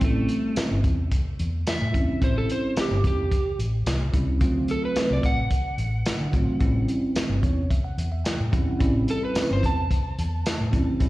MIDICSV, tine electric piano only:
0, 0, Header, 1, 2, 480
1, 0, Start_track
1, 0, Tempo, 549451
1, 17, Time_signature, 4, 2, 24, 8
1, 9691, End_track
2, 0, Start_track
2, 0, Title_t, "Tine electric piano"
2, 0, Program_c, 0, 4
2, 0, Note_on_c, 0, 55, 71
2, 2, Note_on_c, 0, 60, 66
2, 11, Note_on_c, 0, 61, 64
2, 16, Note_on_c, 0, 64, 72
2, 872, Note_off_c, 0, 55, 0
2, 874, Note_off_c, 0, 60, 0
2, 878, Note_off_c, 0, 61, 0
2, 881, Note_off_c, 0, 64, 0
2, 1676, Note_on_c, 0, 55, 67
2, 1684, Note_on_c, 0, 60, 66
2, 1686, Note_on_c, 0, 61, 62
2, 1692, Note_on_c, 0, 64, 82
2, 1902, Note_off_c, 0, 55, 0
2, 1906, Note_off_c, 0, 60, 0
2, 1907, Note_off_c, 0, 61, 0
2, 1910, Note_off_c, 0, 64, 0
2, 1924, Note_on_c, 0, 55, 70
2, 1930, Note_on_c, 0, 60, 61
2, 1934, Note_on_c, 0, 61, 59
2, 1938, Note_on_c, 0, 64, 80
2, 2795, Note_off_c, 0, 55, 0
2, 2798, Note_off_c, 0, 60, 0
2, 2800, Note_off_c, 0, 61, 0
2, 2802, Note_off_c, 0, 64, 0
2, 3603, Note_on_c, 0, 55, 82
2, 3609, Note_on_c, 0, 60, 68
2, 3614, Note_on_c, 0, 61, 71
2, 3618, Note_on_c, 0, 64, 95
2, 3825, Note_off_c, 0, 55, 0
2, 3828, Note_off_c, 0, 60, 0
2, 3831, Note_off_c, 0, 61, 0
2, 3832, Note_off_c, 0, 64, 0
2, 3845, Note_on_c, 0, 54, 73
2, 3848, Note_on_c, 0, 57, 75
2, 3852, Note_on_c, 0, 60, 74
2, 3856, Note_on_c, 0, 65, 87
2, 4716, Note_off_c, 0, 54, 0
2, 4717, Note_off_c, 0, 57, 0
2, 4719, Note_off_c, 0, 60, 0
2, 4721, Note_off_c, 0, 65, 0
2, 5523, Note_on_c, 0, 54, 77
2, 5523, Note_on_c, 0, 57, 79
2, 5530, Note_on_c, 0, 60, 74
2, 5535, Note_on_c, 0, 65, 91
2, 5745, Note_off_c, 0, 57, 0
2, 5746, Note_off_c, 0, 54, 0
2, 5749, Note_off_c, 0, 60, 0
2, 5751, Note_off_c, 0, 65, 0
2, 5764, Note_on_c, 0, 55, 85
2, 5769, Note_on_c, 0, 60, 81
2, 5773, Note_on_c, 0, 61, 73
2, 5776, Note_on_c, 0, 64, 86
2, 6489, Note_on_c, 0, 73, 68
2, 6636, Note_off_c, 0, 55, 0
2, 6639, Note_off_c, 0, 60, 0
2, 6641, Note_off_c, 0, 61, 0
2, 6642, Note_off_c, 0, 64, 0
2, 6716, Note_off_c, 0, 73, 0
2, 6731, Note_on_c, 0, 76, 70
2, 6852, Note_off_c, 0, 76, 0
2, 6853, Note_on_c, 0, 78, 70
2, 7081, Note_off_c, 0, 78, 0
2, 7092, Note_on_c, 0, 76, 68
2, 7202, Note_off_c, 0, 76, 0
2, 7203, Note_on_c, 0, 79, 60
2, 7433, Note_off_c, 0, 79, 0
2, 7439, Note_on_c, 0, 55, 85
2, 7445, Note_on_c, 0, 60, 74
2, 7446, Note_on_c, 0, 78, 66
2, 7447, Note_on_c, 0, 61, 80
2, 7451, Note_on_c, 0, 64, 93
2, 7665, Note_off_c, 0, 55, 0
2, 7667, Note_off_c, 0, 60, 0
2, 7669, Note_off_c, 0, 61, 0
2, 7670, Note_off_c, 0, 64, 0
2, 7675, Note_off_c, 0, 78, 0
2, 7680, Note_on_c, 0, 55, 81
2, 7686, Note_on_c, 0, 60, 75
2, 7691, Note_on_c, 0, 61, 75
2, 7695, Note_on_c, 0, 64, 94
2, 8555, Note_off_c, 0, 55, 0
2, 8558, Note_off_c, 0, 60, 0
2, 8561, Note_off_c, 0, 61, 0
2, 8563, Note_off_c, 0, 64, 0
2, 9361, Note_on_c, 0, 55, 84
2, 9364, Note_on_c, 0, 60, 79
2, 9372, Note_on_c, 0, 61, 69
2, 9377, Note_on_c, 0, 64, 86
2, 9587, Note_off_c, 0, 55, 0
2, 9588, Note_off_c, 0, 60, 0
2, 9592, Note_off_c, 0, 61, 0
2, 9594, Note_off_c, 0, 64, 0
2, 9605, Note_on_c, 0, 55, 80
2, 9610, Note_on_c, 0, 60, 83
2, 9615, Note_on_c, 0, 61, 72
2, 9621, Note_on_c, 0, 64, 88
2, 9691, Note_off_c, 0, 55, 0
2, 9691, Note_off_c, 0, 60, 0
2, 9691, Note_off_c, 0, 61, 0
2, 9691, Note_off_c, 0, 64, 0
2, 9691, End_track
0, 0, End_of_file